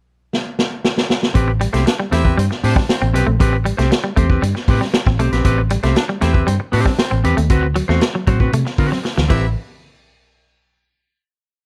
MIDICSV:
0, 0, Header, 1, 7, 480
1, 0, Start_track
1, 0, Tempo, 513699
1, 1262, Time_signature, 4, 2, 24, 8
1, 10893, End_track
2, 0, Start_track
2, 0, Title_t, "Clean electric guitar"
2, 0, Program_c, 0, 27
2, 1253, Note_on_c, 0, 60, 90
2, 1266, Note_on_c, 0, 67, 86
2, 1271, Note_on_c, 0, 71, 82
2, 1402, Note_off_c, 0, 60, 0
2, 1408, Note_off_c, 0, 67, 0
2, 1411, Note_off_c, 0, 71, 0
2, 1615, Note_on_c, 0, 72, 65
2, 1624, Note_on_c, 0, 67, 63
2, 1632, Note_on_c, 0, 60, 62
2, 1719, Note_off_c, 0, 60, 0
2, 1726, Note_off_c, 0, 67, 0
2, 1731, Note_off_c, 0, 72, 0
2, 1974, Note_on_c, 0, 60, 65
2, 1985, Note_on_c, 0, 67, 73
2, 1987, Note_on_c, 0, 72, 67
2, 2090, Note_off_c, 0, 60, 0
2, 2090, Note_off_c, 0, 67, 0
2, 2090, Note_off_c, 0, 72, 0
2, 2094, Note_on_c, 0, 71, 51
2, 2102, Note_on_c, 0, 67, 47
2, 2107, Note_on_c, 0, 60, 47
2, 2210, Note_off_c, 0, 71, 0
2, 2214, Note_off_c, 0, 67, 0
2, 2217, Note_off_c, 0, 60, 0
2, 2462, Note_on_c, 0, 60, 73
2, 2469, Note_on_c, 0, 67, 78
2, 2478, Note_on_c, 0, 72, 96
2, 2573, Note_off_c, 0, 72, 0
2, 2576, Note_off_c, 0, 67, 0
2, 2605, Note_off_c, 0, 60, 0
2, 2930, Note_on_c, 0, 60, 79
2, 2939, Note_on_c, 0, 67, 97
2, 2945, Note_on_c, 0, 71, 104
2, 3041, Note_off_c, 0, 71, 0
2, 3051, Note_off_c, 0, 67, 0
2, 3078, Note_off_c, 0, 60, 0
2, 3174, Note_on_c, 0, 60, 86
2, 3182, Note_on_c, 0, 67, 92
2, 3189, Note_on_c, 0, 71, 97
2, 3320, Note_off_c, 0, 60, 0
2, 3324, Note_off_c, 0, 67, 0
2, 3328, Note_off_c, 0, 71, 0
2, 3525, Note_on_c, 0, 72, 65
2, 3537, Note_on_c, 0, 67, 62
2, 3544, Note_on_c, 0, 60, 54
2, 3644, Note_off_c, 0, 72, 0
2, 3645, Note_off_c, 0, 60, 0
2, 3649, Note_off_c, 0, 67, 0
2, 3895, Note_on_c, 0, 60, 66
2, 3905, Note_on_c, 0, 67, 63
2, 3911, Note_on_c, 0, 72, 65
2, 4008, Note_off_c, 0, 60, 0
2, 4012, Note_off_c, 0, 72, 0
2, 4013, Note_off_c, 0, 67, 0
2, 4016, Note_on_c, 0, 71, 60
2, 4026, Note_on_c, 0, 67, 54
2, 4034, Note_on_c, 0, 60, 50
2, 4128, Note_off_c, 0, 71, 0
2, 4134, Note_off_c, 0, 67, 0
2, 4138, Note_off_c, 0, 60, 0
2, 4380, Note_on_c, 0, 60, 86
2, 4390, Note_on_c, 0, 67, 89
2, 4396, Note_on_c, 0, 71, 98
2, 4483, Note_off_c, 0, 71, 0
2, 4494, Note_off_c, 0, 67, 0
2, 4521, Note_off_c, 0, 60, 0
2, 4857, Note_on_c, 0, 60, 70
2, 4860, Note_on_c, 0, 67, 68
2, 4867, Note_on_c, 0, 72, 77
2, 4968, Note_off_c, 0, 60, 0
2, 4969, Note_off_c, 0, 67, 0
2, 4973, Note_off_c, 0, 72, 0
2, 4976, Note_on_c, 0, 71, 65
2, 4982, Note_on_c, 0, 67, 56
2, 4989, Note_on_c, 0, 60, 51
2, 5077, Note_off_c, 0, 60, 0
2, 5084, Note_off_c, 0, 67, 0
2, 5087, Note_off_c, 0, 71, 0
2, 5088, Note_on_c, 0, 60, 87
2, 5095, Note_on_c, 0, 67, 85
2, 5102, Note_on_c, 0, 71, 103
2, 5234, Note_off_c, 0, 60, 0
2, 5238, Note_off_c, 0, 67, 0
2, 5241, Note_off_c, 0, 71, 0
2, 5447, Note_on_c, 0, 72, 63
2, 5455, Note_on_c, 0, 67, 59
2, 5462, Note_on_c, 0, 60, 50
2, 5561, Note_off_c, 0, 60, 0
2, 5562, Note_off_c, 0, 72, 0
2, 5566, Note_off_c, 0, 67, 0
2, 5803, Note_on_c, 0, 60, 67
2, 5811, Note_on_c, 0, 67, 70
2, 5817, Note_on_c, 0, 72, 75
2, 5914, Note_off_c, 0, 72, 0
2, 5917, Note_on_c, 0, 71, 61
2, 5918, Note_off_c, 0, 67, 0
2, 5920, Note_off_c, 0, 60, 0
2, 5929, Note_on_c, 0, 67, 50
2, 5934, Note_on_c, 0, 60, 45
2, 6037, Note_off_c, 0, 71, 0
2, 6043, Note_off_c, 0, 67, 0
2, 6045, Note_off_c, 0, 60, 0
2, 6279, Note_on_c, 0, 60, 82
2, 6289, Note_on_c, 0, 67, 95
2, 6294, Note_on_c, 0, 72, 92
2, 6402, Note_off_c, 0, 72, 0
2, 6407, Note_off_c, 0, 67, 0
2, 6470, Note_off_c, 0, 60, 0
2, 6763, Note_on_c, 0, 60, 85
2, 6773, Note_on_c, 0, 67, 81
2, 6777, Note_on_c, 0, 71, 86
2, 6872, Note_off_c, 0, 71, 0
2, 6884, Note_off_c, 0, 67, 0
2, 6911, Note_off_c, 0, 60, 0
2, 7010, Note_on_c, 0, 60, 75
2, 7016, Note_on_c, 0, 66, 86
2, 7023, Note_on_c, 0, 71, 77
2, 7154, Note_off_c, 0, 60, 0
2, 7157, Note_off_c, 0, 66, 0
2, 7160, Note_off_c, 0, 71, 0
2, 7364, Note_on_c, 0, 72, 72
2, 7372, Note_on_c, 0, 66, 57
2, 7381, Note_on_c, 0, 60, 56
2, 7477, Note_off_c, 0, 60, 0
2, 7479, Note_off_c, 0, 72, 0
2, 7484, Note_off_c, 0, 66, 0
2, 7731, Note_on_c, 0, 60, 60
2, 7738, Note_on_c, 0, 66, 62
2, 7744, Note_on_c, 0, 72, 71
2, 7843, Note_off_c, 0, 60, 0
2, 7844, Note_off_c, 0, 66, 0
2, 7847, Note_off_c, 0, 72, 0
2, 7851, Note_on_c, 0, 71, 59
2, 7855, Note_on_c, 0, 66, 57
2, 7866, Note_on_c, 0, 60, 52
2, 7953, Note_off_c, 0, 60, 0
2, 7957, Note_off_c, 0, 66, 0
2, 7964, Note_off_c, 0, 71, 0
2, 8208, Note_on_c, 0, 60, 83
2, 8211, Note_on_c, 0, 66, 91
2, 8220, Note_on_c, 0, 71, 82
2, 8312, Note_off_c, 0, 71, 0
2, 8322, Note_off_c, 0, 66, 0
2, 8395, Note_off_c, 0, 60, 0
2, 8675, Note_on_c, 0, 60, 76
2, 8685, Note_on_c, 0, 67, 90
2, 8690, Note_on_c, 0, 71, 88
2, 8828, Note_off_c, 0, 60, 0
2, 8833, Note_off_c, 0, 67, 0
2, 8835, Note_off_c, 0, 71, 0
2, 10893, End_track
3, 0, Start_track
3, 0, Title_t, "Baritone saxophone"
3, 0, Program_c, 1, 67
3, 1632, Note_on_c, 1, 64, 93
3, 1724, Note_off_c, 1, 64, 0
3, 1748, Note_on_c, 1, 62, 87
3, 1818, Note_off_c, 1, 62, 0
3, 1994, Note_on_c, 1, 64, 120
3, 2181, Note_off_c, 1, 64, 0
3, 2232, Note_on_c, 1, 60, 74
3, 2300, Note_off_c, 1, 60, 0
3, 2469, Note_on_c, 1, 62, 109
3, 2657, Note_off_c, 1, 62, 0
3, 2707, Note_on_c, 1, 60, 107
3, 2895, Note_off_c, 1, 60, 0
3, 5457, Note_on_c, 1, 64, 86
3, 5551, Note_off_c, 1, 64, 0
3, 5579, Note_on_c, 1, 62, 104
3, 5649, Note_off_c, 1, 62, 0
3, 5806, Note_on_c, 1, 64, 108
3, 6000, Note_off_c, 1, 64, 0
3, 6054, Note_on_c, 1, 60, 82
3, 6125, Note_off_c, 1, 60, 0
3, 6291, Note_on_c, 1, 62, 99
3, 6483, Note_off_c, 1, 62, 0
3, 6529, Note_on_c, 1, 60, 101
3, 6721, Note_off_c, 1, 60, 0
3, 8696, Note_on_c, 1, 64, 104
3, 8862, Note_off_c, 1, 64, 0
3, 10893, End_track
4, 0, Start_track
4, 0, Title_t, "Clean electric guitar"
4, 0, Program_c, 2, 27
4, 1503, Note_on_c, 2, 55, 81
4, 1577, Note_off_c, 2, 55, 0
4, 1619, Note_on_c, 2, 57, 70
4, 1694, Note_off_c, 2, 57, 0
4, 1865, Note_on_c, 2, 55, 82
4, 1938, Note_off_c, 2, 55, 0
4, 1984, Note_on_c, 2, 57, 75
4, 2058, Note_off_c, 2, 57, 0
4, 2219, Note_on_c, 2, 55, 82
4, 2294, Note_off_c, 2, 55, 0
4, 2582, Note_on_c, 2, 55, 82
4, 2656, Note_off_c, 2, 55, 0
4, 2819, Note_on_c, 2, 60, 71
4, 2894, Note_off_c, 2, 60, 0
4, 3052, Note_on_c, 2, 57, 74
4, 3129, Note_off_c, 2, 57, 0
4, 3415, Note_on_c, 2, 55, 86
4, 3490, Note_off_c, 2, 55, 0
4, 3536, Note_on_c, 2, 57, 83
4, 3611, Note_off_c, 2, 57, 0
4, 3772, Note_on_c, 2, 55, 71
4, 3848, Note_off_c, 2, 55, 0
4, 3891, Note_on_c, 2, 57, 76
4, 3967, Note_off_c, 2, 57, 0
4, 4133, Note_on_c, 2, 55, 87
4, 4208, Note_off_c, 2, 55, 0
4, 4494, Note_on_c, 2, 55, 65
4, 4569, Note_off_c, 2, 55, 0
4, 4736, Note_on_c, 2, 60, 80
4, 4810, Note_off_c, 2, 60, 0
4, 4853, Note_on_c, 2, 57, 73
4, 4927, Note_off_c, 2, 57, 0
4, 5335, Note_on_c, 2, 55, 81
4, 5408, Note_off_c, 2, 55, 0
4, 5453, Note_on_c, 2, 57, 73
4, 5527, Note_off_c, 2, 57, 0
4, 5692, Note_on_c, 2, 55, 75
4, 5767, Note_off_c, 2, 55, 0
4, 5807, Note_on_c, 2, 57, 74
4, 5883, Note_off_c, 2, 57, 0
4, 6044, Note_on_c, 2, 55, 87
4, 6121, Note_off_c, 2, 55, 0
4, 6407, Note_on_c, 2, 55, 76
4, 6483, Note_off_c, 2, 55, 0
4, 6645, Note_on_c, 2, 60, 74
4, 6721, Note_off_c, 2, 60, 0
4, 6888, Note_on_c, 2, 57, 74
4, 6963, Note_off_c, 2, 57, 0
4, 7247, Note_on_c, 2, 54, 79
4, 7323, Note_off_c, 2, 54, 0
4, 7374, Note_on_c, 2, 57, 74
4, 7448, Note_off_c, 2, 57, 0
4, 7616, Note_on_c, 2, 54, 66
4, 7689, Note_off_c, 2, 54, 0
4, 7736, Note_on_c, 2, 54, 85
4, 7809, Note_off_c, 2, 54, 0
4, 7978, Note_on_c, 2, 57, 87
4, 8050, Note_off_c, 2, 57, 0
4, 8335, Note_on_c, 2, 54, 69
4, 8408, Note_off_c, 2, 54, 0
4, 8574, Note_on_c, 2, 52, 68
4, 8648, Note_off_c, 2, 52, 0
4, 8692, Note_on_c, 2, 52, 84
4, 8836, Note_off_c, 2, 52, 0
4, 10893, End_track
5, 0, Start_track
5, 0, Title_t, "Fingered electric bass"
5, 0, Program_c, 3, 33
5, 1263, Note_on_c, 3, 33, 95
5, 1545, Note_off_c, 3, 33, 0
5, 1623, Note_on_c, 3, 36, 68
5, 1717, Note_off_c, 3, 36, 0
5, 1982, Note_on_c, 3, 40, 88
5, 2170, Note_off_c, 3, 40, 0
5, 2221, Note_on_c, 3, 43, 86
5, 2315, Note_off_c, 3, 43, 0
5, 2464, Note_on_c, 3, 45, 97
5, 2557, Note_off_c, 3, 45, 0
5, 2824, Note_on_c, 3, 33, 87
5, 2940, Note_off_c, 3, 33, 0
5, 2940, Note_on_c, 3, 35, 87
5, 3034, Note_off_c, 3, 35, 0
5, 3061, Note_on_c, 3, 34, 94
5, 3180, Note_off_c, 3, 34, 0
5, 3180, Note_on_c, 3, 33, 101
5, 3461, Note_off_c, 3, 33, 0
5, 3540, Note_on_c, 3, 36, 75
5, 3633, Note_off_c, 3, 36, 0
5, 3900, Note_on_c, 3, 40, 87
5, 4086, Note_off_c, 3, 40, 0
5, 4134, Note_on_c, 3, 43, 86
5, 4229, Note_off_c, 3, 43, 0
5, 4377, Note_on_c, 3, 45, 87
5, 4470, Note_off_c, 3, 45, 0
5, 4735, Note_on_c, 3, 33, 93
5, 4853, Note_off_c, 3, 33, 0
5, 4853, Note_on_c, 3, 35, 89
5, 4947, Note_off_c, 3, 35, 0
5, 4975, Note_on_c, 3, 34, 81
5, 5068, Note_off_c, 3, 34, 0
5, 5095, Note_on_c, 3, 33, 110
5, 5376, Note_off_c, 3, 33, 0
5, 5452, Note_on_c, 3, 36, 73
5, 5546, Note_off_c, 3, 36, 0
5, 5813, Note_on_c, 3, 40, 88
5, 6000, Note_off_c, 3, 40, 0
5, 6051, Note_on_c, 3, 43, 98
5, 6145, Note_off_c, 3, 43, 0
5, 6292, Note_on_c, 3, 45, 98
5, 6385, Note_off_c, 3, 45, 0
5, 6654, Note_on_c, 3, 33, 85
5, 6746, Note_off_c, 3, 33, 0
5, 6774, Note_on_c, 3, 40, 99
5, 6867, Note_off_c, 3, 40, 0
5, 6897, Note_on_c, 3, 39, 103
5, 7010, Note_off_c, 3, 39, 0
5, 7010, Note_on_c, 3, 38, 93
5, 7292, Note_off_c, 3, 38, 0
5, 7372, Note_on_c, 3, 40, 79
5, 7465, Note_off_c, 3, 40, 0
5, 7731, Note_on_c, 3, 45, 81
5, 7919, Note_off_c, 3, 45, 0
5, 7971, Note_on_c, 3, 48, 85
5, 8065, Note_off_c, 3, 48, 0
5, 8209, Note_on_c, 3, 50, 93
5, 8304, Note_off_c, 3, 50, 0
5, 8576, Note_on_c, 3, 38, 88
5, 8668, Note_off_c, 3, 38, 0
5, 8694, Note_on_c, 3, 33, 94
5, 8916, Note_off_c, 3, 33, 0
5, 10893, End_track
6, 0, Start_track
6, 0, Title_t, "Muted clean electric guitar strokes"
6, 1382, Note_on_c, 9, 29, 46
6, 1475, Note_off_c, 9, 29, 0
6, 1492, Note_on_c, 9, 29, 47
6, 1586, Note_off_c, 9, 29, 0
6, 1739, Note_on_c, 9, 29, 44
6, 1832, Note_off_c, 9, 29, 0
6, 1861, Note_on_c, 9, 29, 51
6, 1955, Note_off_c, 9, 29, 0
6, 2340, Note_on_c, 9, 29, 46
6, 2433, Note_off_c, 9, 29, 0
6, 2577, Note_on_c, 9, 29, 57
6, 2671, Note_off_c, 9, 29, 0
6, 2820, Note_on_c, 9, 29, 52
6, 2913, Note_off_c, 9, 29, 0
6, 2937, Note_on_c, 9, 29, 46
6, 3030, Note_off_c, 9, 29, 0
6, 3052, Note_on_c, 9, 29, 34
6, 3146, Note_off_c, 9, 29, 0
6, 3298, Note_on_c, 9, 29, 46
6, 3392, Note_off_c, 9, 29, 0
6, 3409, Note_on_c, 9, 29, 59
6, 3502, Note_off_c, 9, 29, 0
6, 3654, Note_on_c, 9, 29, 42
6, 3748, Note_off_c, 9, 29, 0
6, 3780, Note_on_c, 9, 29, 43
6, 3873, Note_off_c, 9, 29, 0
6, 4258, Note_on_c, 9, 29, 43
6, 4351, Note_off_c, 9, 29, 0
6, 4494, Note_on_c, 9, 29, 41
6, 4588, Note_off_c, 9, 29, 0
6, 4618, Note_on_c, 9, 29, 37
6, 4711, Note_off_c, 9, 29, 0
6, 4741, Note_on_c, 9, 29, 46
6, 4834, Note_off_c, 9, 29, 0
6, 5216, Note_on_c, 9, 29, 50
6, 5309, Note_off_c, 9, 29, 0
6, 5337, Note_on_c, 9, 29, 52
6, 5431, Note_off_c, 9, 29, 0
6, 5575, Note_on_c, 9, 29, 44
6, 5668, Note_off_c, 9, 29, 0
6, 5690, Note_on_c, 9, 29, 54
6, 5784, Note_off_c, 9, 29, 0
6, 6171, Note_on_c, 9, 29, 46
6, 6264, Note_off_c, 9, 29, 0
6, 6405, Note_on_c, 9, 29, 43
6, 6499, Note_off_c, 9, 29, 0
6, 6641, Note_on_c, 9, 29, 47
6, 6735, Note_off_c, 9, 29, 0
6, 6771, Note_on_c, 9, 29, 43
6, 6864, Note_off_c, 9, 29, 0
6, 6883, Note_on_c, 9, 29, 37
6, 6977, Note_off_c, 9, 29, 0
6, 7127, Note_on_c, 9, 29, 45
6, 7221, Note_off_c, 9, 29, 0
6, 7249, Note_on_c, 9, 29, 49
6, 7343, Note_off_c, 9, 29, 0
6, 7488, Note_on_c, 9, 29, 41
6, 7582, Note_off_c, 9, 29, 0
6, 7611, Note_on_c, 9, 29, 55
6, 7705, Note_off_c, 9, 29, 0
6, 7964, Note_on_c, 9, 29, 35
6, 8057, Note_off_c, 9, 29, 0
6, 8087, Note_on_c, 9, 29, 43
6, 8180, Note_off_c, 9, 29, 0
6, 8324, Note_on_c, 9, 29, 46
6, 8417, Note_off_c, 9, 29, 0
6, 8441, Note_on_c, 9, 29, 35
6, 8535, Note_off_c, 9, 29, 0
6, 8557, Note_on_c, 9, 29, 45
6, 8651, Note_off_c, 9, 29, 0
6, 10893, End_track
7, 0, Start_track
7, 0, Title_t, "Drums"
7, 311, Note_on_c, 9, 38, 55
7, 405, Note_off_c, 9, 38, 0
7, 549, Note_on_c, 9, 38, 82
7, 642, Note_off_c, 9, 38, 0
7, 790, Note_on_c, 9, 38, 96
7, 883, Note_off_c, 9, 38, 0
7, 911, Note_on_c, 9, 38, 95
7, 1004, Note_off_c, 9, 38, 0
7, 1028, Note_on_c, 9, 38, 98
7, 1121, Note_off_c, 9, 38, 0
7, 1148, Note_on_c, 9, 38, 88
7, 1242, Note_off_c, 9, 38, 0
7, 1261, Note_on_c, 9, 42, 86
7, 1263, Note_on_c, 9, 36, 106
7, 1355, Note_off_c, 9, 42, 0
7, 1356, Note_off_c, 9, 36, 0
7, 1505, Note_on_c, 9, 42, 72
7, 1598, Note_off_c, 9, 42, 0
7, 1624, Note_on_c, 9, 42, 57
7, 1632, Note_on_c, 9, 38, 30
7, 1717, Note_off_c, 9, 42, 0
7, 1725, Note_off_c, 9, 38, 0
7, 1746, Note_on_c, 9, 42, 75
7, 1749, Note_on_c, 9, 38, 97
7, 1839, Note_off_c, 9, 42, 0
7, 1843, Note_off_c, 9, 38, 0
7, 1985, Note_on_c, 9, 42, 80
7, 1988, Note_on_c, 9, 38, 34
7, 2078, Note_off_c, 9, 42, 0
7, 2081, Note_off_c, 9, 38, 0
7, 2101, Note_on_c, 9, 36, 87
7, 2195, Note_off_c, 9, 36, 0
7, 2232, Note_on_c, 9, 42, 77
7, 2325, Note_off_c, 9, 42, 0
7, 2345, Note_on_c, 9, 38, 37
7, 2439, Note_off_c, 9, 38, 0
7, 2465, Note_on_c, 9, 46, 78
7, 2558, Note_off_c, 9, 46, 0
7, 2579, Note_on_c, 9, 36, 99
7, 2588, Note_on_c, 9, 38, 38
7, 2673, Note_off_c, 9, 36, 0
7, 2682, Note_off_c, 9, 38, 0
7, 2703, Note_on_c, 9, 38, 120
7, 2709, Note_on_c, 9, 42, 84
7, 2796, Note_off_c, 9, 38, 0
7, 2803, Note_off_c, 9, 42, 0
7, 2947, Note_on_c, 9, 42, 70
7, 3041, Note_off_c, 9, 42, 0
7, 3179, Note_on_c, 9, 36, 116
7, 3181, Note_on_c, 9, 42, 93
7, 3273, Note_off_c, 9, 36, 0
7, 3275, Note_off_c, 9, 42, 0
7, 3420, Note_on_c, 9, 42, 69
7, 3513, Note_off_c, 9, 42, 0
7, 3539, Note_on_c, 9, 42, 55
7, 3547, Note_on_c, 9, 38, 30
7, 3633, Note_off_c, 9, 42, 0
7, 3641, Note_off_c, 9, 38, 0
7, 3658, Note_on_c, 9, 42, 67
7, 3662, Note_on_c, 9, 38, 110
7, 3752, Note_off_c, 9, 42, 0
7, 3756, Note_off_c, 9, 38, 0
7, 3897, Note_on_c, 9, 36, 77
7, 3897, Note_on_c, 9, 42, 73
7, 3990, Note_off_c, 9, 36, 0
7, 3990, Note_off_c, 9, 42, 0
7, 4015, Note_on_c, 9, 36, 89
7, 4108, Note_off_c, 9, 36, 0
7, 4143, Note_on_c, 9, 42, 80
7, 4236, Note_off_c, 9, 42, 0
7, 4256, Note_on_c, 9, 38, 36
7, 4349, Note_off_c, 9, 38, 0
7, 4373, Note_on_c, 9, 36, 89
7, 4375, Note_on_c, 9, 46, 76
7, 4467, Note_off_c, 9, 36, 0
7, 4468, Note_off_c, 9, 46, 0
7, 4501, Note_on_c, 9, 38, 34
7, 4594, Note_off_c, 9, 38, 0
7, 4612, Note_on_c, 9, 38, 119
7, 4618, Note_on_c, 9, 42, 82
7, 4705, Note_off_c, 9, 38, 0
7, 4712, Note_off_c, 9, 42, 0
7, 4733, Note_on_c, 9, 36, 103
7, 4733, Note_on_c, 9, 38, 40
7, 4826, Note_off_c, 9, 36, 0
7, 4826, Note_off_c, 9, 38, 0
7, 4853, Note_on_c, 9, 42, 80
7, 4947, Note_off_c, 9, 42, 0
7, 4977, Note_on_c, 9, 38, 34
7, 4977, Note_on_c, 9, 42, 59
7, 5070, Note_off_c, 9, 42, 0
7, 5071, Note_off_c, 9, 38, 0
7, 5089, Note_on_c, 9, 42, 90
7, 5091, Note_on_c, 9, 36, 95
7, 5182, Note_off_c, 9, 42, 0
7, 5185, Note_off_c, 9, 36, 0
7, 5329, Note_on_c, 9, 42, 78
7, 5422, Note_off_c, 9, 42, 0
7, 5450, Note_on_c, 9, 42, 52
7, 5458, Note_on_c, 9, 38, 35
7, 5543, Note_off_c, 9, 42, 0
7, 5551, Note_off_c, 9, 38, 0
7, 5570, Note_on_c, 9, 42, 68
7, 5573, Note_on_c, 9, 38, 106
7, 5663, Note_off_c, 9, 42, 0
7, 5667, Note_off_c, 9, 38, 0
7, 5809, Note_on_c, 9, 42, 77
7, 5813, Note_on_c, 9, 38, 35
7, 5903, Note_off_c, 9, 42, 0
7, 5906, Note_off_c, 9, 38, 0
7, 5928, Note_on_c, 9, 36, 86
7, 6021, Note_off_c, 9, 36, 0
7, 6052, Note_on_c, 9, 42, 85
7, 6145, Note_off_c, 9, 42, 0
7, 6287, Note_on_c, 9, 46, 84
7, 6381, Note_off_c, 9, 46, 0
7, 6406, Note_on_c, 9, 36, 94
7, 6412, Note_on_c, 9, 38, 32
7, 6499, Note_off_c, 9, 36, 0
7, 6505, Note_off_c, 9, 38, 0
7, 6527, Note_on_c, 9, 38, 124
7, 6534, Note_on_c, 9, 42, 83
7, 6621, Note_off_c, 9, 38, 0
7, 6627, Note_off_c, 9, 42, 0
7, 6770, Note_on_c, 9, 42, 78
7, 6863, Note_off_c, 9, 42, 0
7, 6893, Note_on_c, 9, 42, 58
7, 6986, Note_off_c, 9, 42, 0
7, 7005, Note_on_c, 9, 42, 80
7, 7008, Note_on_c, 9, 36, 110
7, 7098, Note_off_c, 9, 42, 0
7, 7101, Note_off_c, 9, 36, 0
7, 7247, Note_on_c, 9, 42, 72
7, 7341, Note_off_c, 9, 42, 0
7, 7373, Note_on_c, 9, 38, 33
7, 7467, Note_off_c, 9, 38, 0
7, 7487, Note_on_c, 9, 42, 72
7, 7491, Note_on_c, 9, 38, 101
7, 7580, Note_off_c, 9, 42, 0
7, 7584, Note_off_c, 9, 38, 0
7, 7729, Note_on_c, 9, 42, 80
7, 7730, Note_on_c, 9, 36, 87
7, 7823, Note_off_c, 9, 42, 0
7, 7824, Note_off_c, 9, 36, 0
7, 7849, Note_on_c, 9, 36, 79
7, 7942, Note_off_c, 9, 36, 0
7, 7973, Note_on_c, 9, 42, 80
7, 8066, Note_off_c, 9, 42, 0
7, 8088, Note_on_c, 9, 38, 37
7, 8181, Note_off_c, 9, 38, 0
7, 8208, Note_on_c, 9, 36, 97
7, 8208, Note_on_c, 9, 46, 80
7, 8301, Note_off_c, 9, 36, 0
7, 8302, Note_off_c, 9, 46, 0
7, 8335, Note_on_c, 9, 38, 36
7, 8428, Note_off_c, 9, 38, 0
7, 8454, Note_on_c, 9, 38, 58
7, 8548, Note_off_c, 9, 38, 0
7, 8573, Note_on_c, 9, 38, 71
7, 8666, Note_off_c, 9, 38, 0
7, 8690, Note_on_c, 9, 36, 97
7, 8691, Note_on_c, 9, 49, 82
7, 8784, Note_off_c, 9, 36, 0
7, 8784, Note_off_c, 9, 49, 0
7, 10893, End_track
0, 0, End_of_file